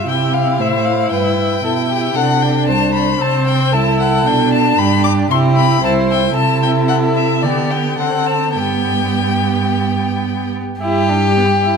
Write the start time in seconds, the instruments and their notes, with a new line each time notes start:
0.06 cello C3, viola E4, violin G4 G5
0.34 violin F5
0.59 cello A2, violin C5 E5
0.85 violin F5
1.11 cello G2, violin B4 G5
1.63 cello B2, viola E4, violin A4
1.89 violin G4
2.15 cello C3, viola D4, violin A4 F#5
2.42 violin G5
2.67 cello C2, violin C5 A5
2.94 violin B5
3.20 cello C3, viola C4, violin C5 A5
3.47 violin G5
3.71 cello C2, viola E4, violin A4 A5
4.00 violin F#5
4.25 cello B2, viola D4, violin G5
4.53 violin A5
4.78 cello G2, violin G4 B5
5.04 violin D6
5.30 cello C3, viola E4, violin G4 C6
5.57 violin B5
5.83 cello C2, viola E4, violin C5 A5
6.11 violin G5
6.35 cello C3, viola E4, violin A4 A5
6.62 violin G5
6.88 violin F#5
7.15 violin E5
7.42 cello D3, viola B3, violin G4 D5
7.70 violin G5
7.98 cello D3, viola C4, violin A4 F#5
8.26 violin A5
8.56 cello G2, viola B3, violin G4 G5
10.80 cello G2, viola E4, violin G4
11.09 viola D4
11.37 viola B3
11.63 viola E4